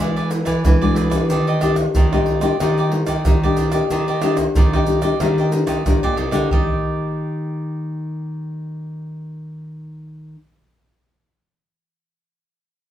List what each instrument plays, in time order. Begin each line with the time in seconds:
Already playing: nylon-string guitar G#3 D4 F#4
0.00 nylon-string guitar E3, cavaquinho E4 G#4 B4 D5, pandeiro, tamborim, shaker, surdo
0.16 cavaquinho G#4 B4 D5, pandeiro, shaker
0.30 muted cavaquinho stroke, pandeiro, shaker
0.45 nylon-string guitar E3, cavaquinho G#4 B4 D5, pandeiro, tamborim, shaker, surdo
0.65 nylon-string guitar B2 E3 G#3 D4 F#4, pandeiro, tamborim, shaker, surdo
0.81 nylon-string guitar G#3 D4 F#4, cavaquinho G#4 B4 D5, pandeiro, shaker
0.95 cavaquinho E4 G#4 B4 D5, pandeiro, shaker
1.10 nylon-string guitar A#3 D4 G4, cavaquinho G#4 B4 D5, pandeiro, tamborim, shaker, surdo
1.29 nylon-string guitar D#3, cavaquinho D4 G4 D5 D#5, pandeiro, shaker, surdo
1.47 cavaquinho G4 D5 D#5, pandeiro, shaker
1.61 nylon-string guitar A#3 D4 G4, cavaquinho D4 G4 D5 D#5, pandeiro, tamborim, shaker, surdo
1.76 muted cavaquinho stroke, pandeiro, tamborim, shaker, surdo
1.95 nylon-string guitar A#2 D#3, cavaquinho D4 G4 D5 D#5, pandeiro, shaker, surdo
2.12 nylon-string guitar A#3 D4 G4, cavaquinho G4 D5 D#5, pandeiro, tamborim, shaker
2.26 pandeiro
2.41 nylon-string guitar A#3 D4 G4, cavaquinho G4 D5 D#5, pandeiro, tamborim, shaker, surdo
2.60 nylon-string guitar D#3 A#3 D4 G4, cavaquinho D4 G4 D5 D#5, pandeiro, tamborim, shaker, surdo
2.77 cavaquinho G4 D5 D#5, pandeiro, shaker
2.92 nylon-string guitar A#3 D4 G4, muted cavaquinho stroke, pandeiro
3.07 nylon-string guitar D#3, cavaquinho G4 D5 D#5, pandeiro, tamborim, shaker, surdo
3.25 nylon-string guitar A#2 D#3 A#3 D4 G4, pandeiro, tamborim, shaker, surdo
3.43 nylon-string guitar A#3 D4 G4, cavaquinho G4 D5 D#5, pandeiro, shaker
3.57 cavaquinho D4 G4 D5 D#5, pandeiro, shaker
3.72 nylon-string guitar A#3 D4 G4, cavaquinho G4 D5 D#5, pandeiro, tamborim, shaker, surdo
3.90 nylon-string guitar D#3, cavaquinho D4 G4 D5 D#5, pandeiro, shaker, surdo
4.08 cavaquinho G4 D5 D#5, pandeiro, shaker
4.22 nylon-string guitar A#3 D4 G4, cavaquinho D4 G4 D5 D#5, pandeiro, tamborim, shaker
4.37 muted cavaquinho stroke, pandeiro, tamborim, shaker, surdo
4.55 nylon-string guitar A#2 D#3, cavaquinho D4 G4 D5 D#5, pandeiro, shaker, surdo
4.73 nylon-string guitar A#3 D4 G4, cavaquinho G4 D5 D#5, pandeiro, tamborim, shaker
4.86 nylon-string guitar A#3 D4 G4, pandeiro, shaker
5.02 nylon-string guitar A#3 D4 G4, cavaquinho G4 D5 D#5, pandeiro, tamborim, shaker, surdo
5.20 nylon-string guitar D#3 A#3 D4 G4, cavaquinho D4 G4 D5 D#5, pandeiro, tamborim, shaker, surdo
5.38 cavaquinho G4 D5 D#5, pandeiro, shaker
5.52 nylon-string guitar A#3 D4 G4, muted cavaquinho stroke, pandeiro, shaker
5.66 nylon-string guitar D#3, cavaquinho G4 D5 D#5, pandeiro, tamborim, shaker, surdo
5.86 nylon-string guitar A#2 D#3 A#3 D4 G4, pandeiro, tamborim, shaker, surdo
6.03 nylon-string guitar A#2, cavaquinho G4 D5 D#5, pandeiro, shaker
6.16 nylon-string guitar C3, cavaquinho D4 G4 D5 D#5, pandeiro
6.31 nylon-string guitar D3 A#3 D4 G4, cavaquinho G4 D5 D#5, pandeiro, tamborim, shaker, surdo
6.47 nylon-string guitar D#3, cavaquinho G4, surdo
6.52 nylon-string guitar D#3 A#3, cavaquinho D5 D#5
6.62 nylon-string guitar G4